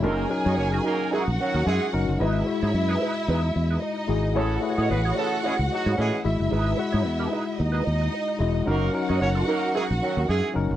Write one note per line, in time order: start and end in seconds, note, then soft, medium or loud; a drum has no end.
0.02 0.25 F#1 loud
0.02 0.28 F#3 medium
0.02 0.25 F#3 loud
0.02 0.26 A#3 loud
0.02 0.27 C#4 medium
0.02 0.13 D4 medium
0.02 0.28 D#4 medium
0.02 0.26 D#4 loud
0.02 0.15 F4 loud
0.02 1.10 G#4 loud
0.02 0.15 A4 loud
0.02 0.28 A#4 loud
0.02 0.26 A#4 loud
0.02 1.10 G#5 loud
0.13 0.28 D#4 medium
0.13 0.29 F#4 loud
0.13 0.29 A#4 loud
0.29 1.27 F#3 medium
0.29 1.27 C#4 medium
0.29 1.28 D#4 medium
0.29 1.28 A#4 medium
0.29 muted clean electric guitar stroke soft
0.45 0.55 F#2 loud
0.45 0.55 A#3 medium
0.45 0.55 D#4 medium
0.45 0.56 F#4 loud
0.45 0.56 F#4 medium
0.45 0.57 C#5 medium
0.45 0.55 D#5 loud
0.56 0.79 F#1 medium
0.56 0.67 A#3 medium
0.56 0.67 C#4 medium
0.56 0.67 F#4 medium
0.56 0.67 C#5 medium
0.56 muted clean electric guitar stroke medium
0.72 0.82 D#4 medium
0.72 0.83 F#4 loud
0.72 0.84 A#4 loud
0.83 1.07 F#3 loud
0.83 1.07 A#3 loud
0.83 0.99 D#4 medium
0.83 1.07 D#4 loud
0.83 1.00 F#4 medium
0.83 1.07 A#4 loud
0.83 0.98 A#4 medium
1.00 muted clean electric guitar stroke soft
1.11 1.21 G#3 loud
1.11 1.30 D#4 loud
1.11 1.21 E4 medium
1.11 1.28 F#4 loud
1.11 2.18 F#4 medium
1.11 1.21 G#4 loud
1.11 1.26 A#4 medium
1.11 2.18 F#5 loud
1.27 1.37 A#1 medium
1.27 muted clean electric guitar stroke medium
1.39 1.61 D#3 loud
1.39 1.61 F#3 loud
1.39 1.61 C#4 loud
1.39 1.61 F#4 loud
1.39 muted clean electric guitar stroke medium
1.54 1.64 D#2 medium
1.54 1.65 D#4 medium
1.54 1.66 F#4 medium
1.54 1.66 A#4 medium
1.66 1.78 F#2 loud
1.66 1.88 G#3 loud
1.66 1.88 E4 loud
1.66 1.88 G#4 loud
1.66 muted clean electric guitar stroke soft
1.81 muted clean electric guitar stroke medium
1.93 2.05 F#1 loud
1.93 2.17 F#3 medium
1.93 2.17 C#4 medium
1.93 2.18 D#4 medium
1.93 2.18 A#4 medium
2.09 2.18 F#1 loud
2.09 muted clean electric guitar stroke medium
2.20 2.41 G#1 loud
2.20 2.44 G#3 medium
2.20 2.45 D#4 medium
2.20 2.44 E4 medium
2.20 3.79 E4 medium
2.20 2.45 F#4 medium
2.20 2.46 G#4 medium
2.20 2.46 B4 medium
2.20 2.45 D#5 loud
2.20 3.79 E5 loud
2.46 3.43 G#3 medium
2.46 3.44 E4 medium
2.46 3.44 F#4 medium
2.46 3.44 E5 medium
2.46 muted clean electric guitar stroke soft
2.63 2.72 G#2 loud
2.63 2.74 D#4 medium
2.63 2.75 G#4 medium
2.63 2.74 C#5 medium
2.74 2.95 F#2 loud
2.74 muted clean electric guitar stroke soft
2.89 3.00 D#4 medium
2.89 3.00 G#4 medium
2.89 3.01 B4 medium
3.01 3.16 D#4 medium
3.01 3.16 G#4 medium
3.01 3.16 B4 medium
3.17 muted clean electric guitar stroke soft
3.28 3.49 E2 loud
3.28 3.46 D#4 medium
3.28 3.43 G#4 medium
3.28 3.42 B4 loud
3.43 muted clean electric guitar stroke medium
3.55 3.76 E2 loud
3.55 muted clean electric guitar stroke soft
3.70 3.80 D#4 soft
3.70 3.81 G#4 medium
3.70 3.81 B4 medium
3.81 4.35 D#4 medium
3.81 4.35 D#5 medium
3.81 muted clean electric guitar stroke soft
3.96 muted clean electric guitar stroke soft
4.08 4.36 G#1 medium
4.08 4.33 G#3 medium
4.08 4.33 E4 medium
4.08 4.33 F#4 medium
4.08 4.34 G#4 medium
4.23 muted clean electric guitar stroke soft
4.34 4.57 A1 loud
4.34 4.57 E3 loud
4.34 4.59 A3 medium
4.34 4.57 A3 loud
4.34 4.57 C#4 medium
4.34 4.60 E4 medium
4.34 6.21 F#4 medium
4.34 4.60 G#4 medium
4.34 4.61 G#4 medium
4.34 4.57 A4 loud
4.34 4.60 C#5 loud
4.34 4.61 C#5 loud
4.34 6.21 F#5 loud
4.62 5.59 A3 medium
4.62 5.59 E4 medium
4.62 5.59 G#4 medium
4.62 4.70 B4 medium
4.62 muted clean electric guitar stroke soft
4.70 5.63 C#5 medium
4.77 4.92 A2 medium
4.77 4.88 A3 medium
4.77 4.88 C#4 loud
4.77 4.89 E4 medium
4.77 4.89 G#4 medium
4.77 4.88 G#4 medium
4.77 4.88 C#5 loud
4.77 4.89 D#5 medium
4.89 5.11 A1 loud
4.89 4.99 B3 medium
4.89 4.99 G#4 medium
4.89 4.99 B4 medium
4.89 muted clean electric guitar stroke soft
5.05 5.15 E4 medium
5.05 5.16 G#4 medium
5.05 5.17 C#5 medium
5.16 5.38 E3 loud
5.16 5.38 A3 loud
5.16 5.38 C#4 loud
5.16 5.31 E4 medium
5.16 5.32 G#4 medium
5.16 5.38 A4 loud
5.16 5.31 C#5 medium
5.32 muted clean electric guitar stroke medium
5.43 5.53 E3 medium
5.43 5.53 G#3 medium
5.43 5.53 C#4 medium
5.43 5.62 E4 medium
5.43 5.53 G#4 medium
5.43 5.59 G#4 loud
5.43 5.57 C#5 loud
5.59 5.68 C#2 medium
5.59 muted clean electric guitar stroke soft
5.71 5.92 F#3 loud
5.71 5.92 D#4 medium
5.71 5.92 F#4 loud
5.71 muted clean electric guitar stroke medium
5.86 5.95 G#2 loud
5.86 5.97 E4 medium
5.86 5.97 G#4 medium
5.86 5.97 C#5 medium
5.97 6.10 A2 loud
5.97 6.19 E3 loud
5.97 6.19 G#3 loud
5.97 6.19 C#4 loud
5.97 6.19 G#4 loud
5.97 muted clean electric guitar stroke soft
6.12 muted clean electric guitar stroke soft
6.24 6.37 G#1 loud
6.24 6.73 G#3 loud
6.24 6.73 E4 medium
6.24 7.57 E4 medium
6.24 6.73 F#4 medium
6.24 7.57 E5 medium
6.24 6.73 E5 loud
6.40 6.49 F#1 medium
6.40 muted clean electric guitar stroke soft
6.50 6.73 G#1 loud
6.50 6.76 D#4 medium
6.50 6.76 G#4 medium
6.50 6.77 B4 medium
6.78 7.75 G#3 medium
6.78 7.75 E4 medium
6.78 7.75 F#4 medium
6.78 7.75 F#5 medium
6.92 7.06 G#2 loud
6.92 7.03 D#4 medium
6.92 7.04 G#4 medium
6.92 7.05 C#5 medium
7.04 7.26 E2 medium
7.04 muted clean electric guitar stroke soft
7.19 7.30 D#4 medium
7.19 7.31 G#4 medium
7.19 7.32 B4 medium
7.31 7.47 D#4 medium
7.31 7.46 G#4 medium
7.31 7.45 B4 medium
7.58 7.80 D#2 loud
7.58 8.65 D#4 medium
7.58 8.65 D#5 loud
7.58 muted clean electric guitar stroke soft
7.72 7.84 D#4 medium
7.72 7.84 G#4 medium
7.72 7.85 B4 medium
7.85 8.07 D#2 loud
7.85 muted clean electric guitar stroke soft
8.01 muted clean electric guitar stroke soft
8.13 muted clean electric guitar stroke soft
8.28 muted clean electric guitar stroke medium
8.39 8.61 E1 loud
8.39 8.63 G#3 medium
8.39 8.64 E4 medium
8.39 8.64 F#4 medium
8.39 8.64 D#5 loud
8.54 muted clean electric guitar stroke soft
8.66 8.88 F#1 loud
8.66 8.91 F#3 loud
8.66 8.88 F#3 loud
8.66 8.88 A#3 loud
8.66 8.91 C#4 medium
8.66 8.91 D#4 medium
8.66 8.88 D#4 loud
8.66 8.91 D#4 medium
8.66 10.77 F#4 medium
8.66 8.92 F#4 medium
8.66 8.88 A#4 loud
8.66 8.91 A#4 loud
8.66 8.92 A#4 medium
8.66 10.77 F#5 loud
8.93 9.90 F#3 medium
8.93 9.90 C#4 medium
8.93 9.90 D#4 medium
8.93 9.91 A#4 medium
8.93 muted clean electric guitar stroke medium
9.08 9.18 F#2 loud
9.08 9.18 A#3 medium
9.08 9.18 D#4 medium
9.08 9.20 D#4 medium
9.08 9.18 F#4 medium
9.08 9.21 F#4 medium
9.08 9.20 C#5 medium
9.08 9.18 D#5 loud
9.21 9.42 F#1 medium
9.21 9.30 A#3 medium
9.21 9.30 C#4 medium
9.21 9.30 F#4 medium
9.21 9.30 C#5 loud
9.21 muted clean electric guitar stroke soft
9.35 9.46 D#4 medium
9.35 9.46 F#4 loud
9.35 9.48 A#4 loud
9.47 9.69 F#3 loud
9.47 9.69 A#3 loud
9.47 9.62 D#4 medium
9.47 9.69 D#4 loud
9.47 9.62 F#4 medium
9.47 9.69 A#4 loud
9.47 9.61 A#4 medium
9.62 muted clean electric guitar stroke soft
9.74 9.83 G#3 medium
9.74 9.93 D#4 medium
9.74 9.83 E4 loud
9.74 9.89 F#4 medium
9.74 9.83 G#4 loud
9.74 9.88 A#4 loud
9.89 9.99 A#1 medium
9.89 muted clean electric guitar stroke medium
10.01 10.23 D#3 loud
10.01 10.23 F#3 loud
10.01 10.23 C#4 loud
10.01 10.23 F#4 loud
10.01 muted clean electric guitar stroke soft
10.17 10.26 D#2 medium
10.17 10.27 D#4 medium
10.17 10.29 F#4 medium
10.17 10.28 A#4 medium
10.28 10.40 F#2 loud
10.28 10.50 G#3 loud
10.28 10.50 E4 loud
10.28 10.50 G#4 loud
10.28 muted clean electric guitar stroke soft
10.44 muted clean electric guitar stroke soft
10.54 10.67 F#1 medium
10.54 10.77 F#3 medium
10.54 10.77 C#4 medium
10.54 10.77 D#4 medium
10.54 10.77 A#4 medium
10.71 10.77 F#1 loud
10.71 muted clean electric guitar stroke soft